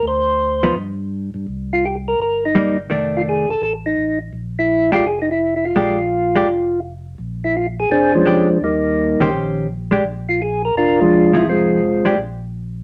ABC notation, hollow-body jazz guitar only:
X:1
M:4/4
L:1/8
Q:"Swing" 1/4=168
K:Bbmix
V:1 name="Hollow-body jazz guitar"
z3 [F,_CE] z4 | z6 [G,B,E] z | [E,=A,D]3 z4 z | z3 [A,DG] z4 |
[A,DG] z2 [A,DG] z4 | z6 [A,DG] z | z3 [E,_DGc]3 z [A,=DG] | z6 z [F,CEA]- |
[F,CEA]2 z [A,DG] z4 |]